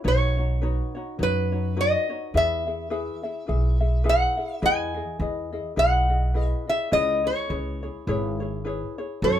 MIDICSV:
0, 0, Header, 1, 4, 480
1, 0, Start_track
1, 0, Key_signature, 4, "major"
1, 0, Tempo, 573614
1, 38, Time_signature, 4, 2, 24, 8
1, 7863, End_track
2, 0, Start_track
2, 0, Title_t, "Resonator guitar played with a steel bar"
2, 0, Program_c, 0, 25
2, 65, Note_on_c, 0, 73, 88
2, 1028, Note_on_c, 0, 71, 80
2, 1038, Note_off_c, 0, 73, 0
2, 1506, Note_off_c, 0, 71, 0
2, 1512, Note_on_c, 0, 75, 101
2, 1982, Note_off_c, 0, 75, 0
2, 1986, Note_on_c, 0, 76, 98
2, 3377, Note_off_c, 0, 76, 0
2, 3426, Note_on_c, 0, 78, 100
2, 3802, Note_off_c, 0, 78, 0
2, 3802, Note_on_c, 0, 76, 100
2, 3896, Note_on_c, 0, 80, 110
2, 3904, Note_off_c, 0, 76, 0
2, 4843, Note_off_c, 0, 80, 0
2, 4846, Note_on_c, 0, 78, 93
2, 5399, Note_off_c, 0, 78, 0
2, 5399, Note_on_c, 0, 76, 93
2, 5599, Note_off_c, 0, 76, 0
2, 5602, Note_on_c, 0, 76, 83
2, 5796, Note_off_c, 0, 76, 0
2, 5799, Note_on_c, 0, 75, 92
2, 6081, Note_on_c, 0, 73, 74
2, 6082, Note_off_c, 0, 75, 0
2, 7004, Note_off_c, 0, 73, 0
2, 7733, Note_on_c, 0, 73, 86
2, 7863, Note_off_c, 0, 73, 0
2, 7863, End_track
3, 0, Start_track
3, 0, Title_t, "Ukulele"
3, 0, Program_c, 1, 24
3, 33, Note_on_c, 1, 71, 77
3, 37, Note_on_c, 1, 63, 77
3, 41, Note_on_c, 1, 66, 79
3, 46, Note_on_c, 1, 73, 90
3, 301, Note_off_c, 1, 73, 0
3, 311, Note_off_c, 1, 71, 0
3, 311, Note_on_c, 1, 73, 50
3, 313, Note_off_c, 1, 63, 0
3, 314, Note_off_c, 1, 66, 0
3, 324, Note_on_c, 1, 66, 45
3, 327, Note_on_c, 1, 63, 43
3, 514, Note_off_c, 1, 63, 0
3, 515, Note_on_c, 1, 71, 69
3, 516, Note_off_c, 1, 73, 0
3, 518, Note_off_c, 1, 66, 0
3, 524, Note_on_c, 1, 63, 79
3, 527, Note_on_c, 1, 73, 74
3, 528, Note_on_c, 1, 66, 86
3, 783, Note_off_c, 1, 73, 0
3, 792, Note_off_c, 1, 71, 0
3, 793, Note_on_c, 1, 73, 59
3, 796, Note_off_c, 1, 63, 0
3, 796, Note_off_c, 1, 66, 0
3, 806, Note_on_c, 1, 66, 56
3, 809, Note_on_c, 1, 63, 50
3, 991, Note_off_c, 1, 63, 0
3, 992, Note_off_c, 1, 66, 0
3, 992, Note_on_c, 1, 71, 58
3, 997, Note_off_c, 1, 73, 0
3, 1001, Note_on_c, 1, 63, 60
3, 1002, Note_on_c, 1, 66, 65
3, 1006, Note_on_c, 1, 73, 73
3, 1263, Note_off_c, 1, 73, 0
3, 1270, Note_off_c, 1, 66, 0
3, 1270, Note_off_c, 1, 71, 0
3, 1273, Note_on_c, 1, 73, 54
3, 1274, Note_off_c, 1, 63, 0
3, 1280, Note_on_c, 1, 66, 47
3, 1289, Note_on_c, 1, 63, 40
3, 1470, Note_off_c, 1, 63, 0
3, 1471, Note_off_c, 1, 66, 0
3, 1473, Note_off_c, 1, 73, 0
3, 1477, Note_on_c, 1, 71, 76
3, 1480, Note_on_c, 1, 63, 77
3, 1481, Note_on_c, 1, 66, 76
3, 1483, Note_on_c, 1, 73, 82
3, 1742, Note_off_c, 1, 73, 0
3, 1748, Note_off_c, 1, 66, 0
3, 1752, Note_off_c, 1, 71, 0
3, 1752, Note_on_c, 1, 73, 50
3, 1754, Note_off_c, 1, 63, 0
3, 1758, Note_on_c, 1, 66, 48
3, 1769, Note_on_c, 1, 63, 40
3, 1956, Note_off_c, 1, 73, 0
3, 1959, Note_off_c, 1, 66, 0
3, 1962, Note_on_c, 1, 71, 80
3, 1964, Note_off_c, 1, 63, 0
3, 1967, Note_on_c, 1, 64, 82
3, 1970, Note_on_c, 1, 68, 83
3, 1970, Note_on_c, 1, 76, 87
3, 2221, Note_off_c, 1, 76, 0
3, 2229, Note_off_c, 1, 68, 0
3, 2231, Note_on_c, 1, 76, 47
3, 2235, Note_off_c, 1, 71, 0
3, 2236, Note_off_c, 1, 64, 0
3, 2239, Note_on_c, 1, 68, 51
3, 2252, Note_on_c, 1, 64, 41
3, 2423, Note_off_c, 1, 64, 0
3, 2425, Note_off_c, 1, 68, 0
3, 2429, Note_off_c, 1, 76, 0
3, 2429, Note_on_c, 1, 71, 75
3, 2433, Note_on_c, 1, 64, 74
3, 2435, Note_on_c, 1, 68, 78
3, 2439, Note_on_c, 1, 76, 84
3, 2696, Note_off_c, 1, 76, 0
3, 2703, Note_off_c, 1, 68, 0
3, 2706, Note_on_c, 1, 76, 59
3, 2708, Note_off_c, 1, 71, 0
3, 2710, Note_off_c, 1, 64, 0
3, 2713, Note_on_c, 1, 68, 55
3, 2720, Note_on_c, 1, 64, 44
3, 2900, Note_off_c, 1, 64, 0
3, 2902, Note_on_c, 1, 71, 60
3, 2905, Note_off_c, 1, 68, 0
3, 2908, Note_off_c, 1, 76, 0
3, 2910, Note_on_c, 1, 64, 73
3, 2915, Note_on_c, 1, 68, 74
3, 2918, Note_on_c, 1, 76, 70
3, 3174, Note_off_c, 1, 76, 0
3, 3181, Note_off_c, 1, 68, 0
3, 3184, Note_off_c, 1, 71, 0
3, 3185, Note_on_c, 1, 76, 58
3, 3188, Note_off_c, 1, 64, 0
3, 3191, Note_on_c, 1, 68, 55
3, 3199, Note_on_c, 1, 64, 50
3, 3379, Note_off_c, 1, 64, 0
3, 3381, Note_on_c, 1, 71, 87
3, 3383, Note_off_c, 1, 68, 0
3, 3385, Note_off_c, 1, 76, 0
3, 3389, Note_on_c, 1, 64, 87
3, 3393, Note_on_c, 1, 68, 85
3, 3395, Note_on_c, 1, 76, 87
3, 3647, Note_off_c, 1, 76, 0
3, 3656, Note_off_c, 1, 68, 0
3, 3657, Note_on_c, 1, 76, 57
3, 3664, Note_off_c, 1, 64, 0
3, 3664, Note_off_c, 1, 71, 0
3, 3666, Note_on_c, 1, 68, 47
3, 3674, Note_on_c, 1, 64, 45
3, 3858, Note_off_c, 1, 64, 0
3, 3862, Note_off_c, 1, 68, 0
3, 3865, Note_on_c, 1, 71, 85
3, 3868, Note_off_c, 1, 76, 0
3, 3868, Note_on_c, 1, 64, 77
3, 3873, Note_on_c, 1, 68, 80
3, 3881, Note_on_c, 1, 75, 87
3, 4138, Note_off_c, 1, 75, 0
3, 4145, Note_off_c, 1, 71, 0
3, 4147, Note_off_c, 1, 68, 0
3, 4148, Note_off_c, 1, 64, 0
3, 4148, Note_on_c, 1, 75, 46
3, 4157, Note_on_c, 1, 68, 52
3, 4167, Note_on_c, 1, 64, 44
3, 4345, Note_off_c, 1, 64, 0
3, 4348, Note_off_c, 1, 75, 0
3, 4351, Note_on_c, 1, 71, 61
3, 4352, Note_off_c, 1, 68, 0
3, 4355, Note_on_c, 1, 64, 56
3, 4362, Note_on_c, 1, 68, 69
3, 4368, Note_on_c, 1, 75, 70
3, 4613, Note_off_c, 1, 75, 0
3, 4620, Note_off_c, 1, 68, 0
3, 4620, Note_off_c, 1, 71, 0
3, 4623, Note_on_c, 1, 75, 66
3, 4626, Note_off_c, 1, 64, 0
3, 4630, Note_on_c, 1, 68, 54
3, 4638, Note_on_c, 1, 64, 52
3, 4818, Note_off_c, 1, 64, 0
3, 4819, Note_off_c, 1, 75, 0
3, 4820, Note_off_c, 1, 68, 0
3, 4822, Note_on_c, 1, 71, 79
3, 4828, Note_on_c, 1, 64, 80
3, 4830, Note_on_c, 1, 68, 81
3, 4833, Note_on_c, 1, 75, 88
3, 5086, Note_off_c, 1, 75, 0
3, 5093, Note_off_c, 1, 71, 0
3, 5096, Note_on_c, 1, 75, 55
3, 5097, Note_off_c, 1, 68, 0
3, 5104, Note_off_c, 1, 64, 0
3, 5107, Note_on_c, 1, 68, 48
3, 5116, Note_on_c, 1, 64, 49
3, 5302, Note_off_c, 1, 75, 0
3, 5303, Note_off_c, 1, 64, 0
3, 5306, Note_on_c, 1, 71, 61
3, 5308, Note_off_c, 1, 68, 0
3, 5313, Note_on_c, 1, 64, 68
3, 5318, Note_on_c, 1, 68, 71
3, 5325, Note_on_c, 1, 75, 69
3, 5573, Note_off_c, 1, 75, 0
3, 5580, Note_off_c, 1, 71, 0
3, 5583, Note_on_c, 1, 75, 52
3, 5584, Note_off_c, 1, 68, 0
3, 5590, Note_off_c, 1, 64, 0
3, 5594, Note_on_c, 1, 68, 48
3, 5603, Note_on_c, 1, 64, 45
3, 5781, Note_off_c, 1, 64, 0
3, 5784, Note_off_c, 1, 68, 0
3, 5784, Note_off_c, 1, 75, 0
3, 5787, Note_on_c, 1, 71, 86
3, 5791, Note_on_c, 1, 64, 86
3, 5795, Note_on_c, 1, 68, 84
3, 5796, Note_on_c, 1, 73, 86
3, 6048, Note_off_c, 1, 73, 0
3, 6058, Note_on_c, 1, 73, 48
3, 6060, Note_off_c, 1, 68, 0
3, 6068, Note_off_c, 1, 71, 0
3, 6070, Note_off_c, 1, 64, 0
3, 6070, Note_on_c, 1, 68, 53
3, 6079, Note_on_c, 1, 64, 47
3, 6264, Note_off_c, 1, 64, 0
3, 6269, Note_off_c, 1, 73, 0
3, 6269, Note_on_c, 1, 71, 61
3, 6270, Note_off_c, 1, 68, 0
3, 6274, Note_on_c, 1, 64, 59
3, 6280, Note_on_c, 1, 68, 66
3, 6286, Note_on_c, 1, 73, 65
3, 6539, Note_off_c, 1, 73, 0
3, 6546, Note_off_c, 1, 68, 0
3, 6549, Note_off_c, 1, 71, 0
3, 6549, Note_on_c, 1, 73, 53
3, 6551, Note_off_c, 1, 64, 0
3, 6556, Note_on_c, 1, 68, 53
3, 6567, Note_on_c, 1, 64, 44
3, 6752, Note_off_c, 1, 64, 0
3, 6754, Note_off_c, 1, 68, 0
3, 6755, Note_off_c, 1, 73, 0
3, 6758, Note_on_c, 1, 71, 94
3, 6762, Note_on_c, 1, 64, 95
3, 6764, Note_on_c, 1, 68, 91
3, 6770, Note_on_c, 1, 73, 97
3, 7020, Note_off_c, 1, 73, 0
3, 7030, Note_on_c, 1, 73, 62
3, 7031, Note_off_c, 1, 68, 0
3, 7034, Note_off_c, 1, 71, 0
3, 7036, Note_off_c, 1, 64, 0
3, 7041, Note_on_c, 1, 68, 58
3, 7048, Note_on_c, 1, 64, 54
3, 7230, Note_off_c, 1, 64, 0
3, 7235, Note_on_c, 1, 71, 66
3, 7236, Note_off_c, 1, 68, 0
3, 7236, Note_off_c, 1, 73, 0
3, 7240, Note_on_c, 1, 64, 69
3, 7246, Note_on_c, 1, 68, 76
3, 7252, Note_on_c, 1, 73, 78
3, 7506, Note_off_c, 1, 73, 0
3, 7513, Note_off_c, 1, 68, 0
3, 7513, Note_off_c, 1, 71, 0
3, 7515, Note_off_c, 1, 64, 0
3, 7516, Note_on_c, 1, 73, 66
3, 7523, Note_on_c, 1, 68, 56
3, 7533, Note_on_c, 1, 64, 46
3, 7719, Note_off_c, 1, 64, 0
3, 7719, Note_off_c, 1, 73, 0
3, 7722, Note_off_c, 1, 68, 0
3, 7723, Note_on_c, 1, 69, 85
3, 7729, Note_on_c, 1, 64, 80
3, 7734, Note_on_c, 1, 66, 93
3, 7738, Note_on_c, 1, 73, 86
3, 7863, Note_off_c, 1, 64, 0
3, 7863, Note_off_c, 1, 66, 0
3, 7863, Note_off_c, 1, 69, 0
3, 7863, Note_off_c, 1, 73, 0
3, 7863, End_track
4, 0, Start_track
4, 0, Title_t, "Upright bass"
4, 0, Program_c, 2, 32
4, 38, Note_on_c, 2, 35, 96
4, 661, Note_off_c, 2, 35, 0
4, 995, Note_on_c, 2, 42, 85
4, 1619, Note_off_c, 2, 42, 0
4, 1958, Note_on_c, 2, 40, 88
4, 2581, Note_off_c, 2, 40, 0
4, 2921, Note_on_c, 2, 35, 83
4, 3543, Note_off_c, 2, 35, 0
4, 3871, Note_on_c, 2, 40, 95
4, 4184, Note_off_c, 2, 40, 0
4, 4347, Note_on_c, 2, 40, 91
4, 4662, Note_off_c, 2, 40, 0
4, 4829, Note_on_c, 2, 35, 89
4, 5456, Note_off_c, 2, 35, 0
4, 5793, Note_on_c, 2, 37, 99
4, 6106, Note_off_c, 2, 37, 0
4, 6276, Note_on_c, 2, 37, 89
4, 6589, Note_off_c, 2, 37, 0
4, 6754, Note_on_c, 2, 32, 96
4, 7380, Note_off_c, 2, 32, 0
4, 7717, Note_on_c, 2, 42, 103
4, 7863, Note_off_c, 2, 42, 0
4, 7863, End_track
0, 0, End_of_file